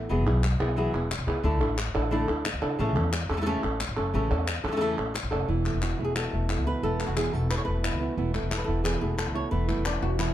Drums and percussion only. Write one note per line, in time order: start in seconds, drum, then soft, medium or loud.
0.44 clap medium
0.61 clap medium
1.11 clap medium
1.28 clap soft
1.78 clap medium
1.95 clap medium
2.45 clap medium
2.62 clap soft
3.13 clap medium
3.30 clap medium
3.80 clap medium
3.97 clap soft
4.48 clap medium
4.65 clap medium
5.16 clap medium
5.32 clap soft
5.66 clap medium
5.82 clap medium
6.16 clap medium
6.50 clap medium
7.00 clap medium
7.17 clap medium
7.51 clap medium
7.84 clap medium
8.35 clap medium
8.52 clap medium
8.86 clap medium
9.19 clap medium
9.69 clap medium
9.86 clap medium
10.19 clap medium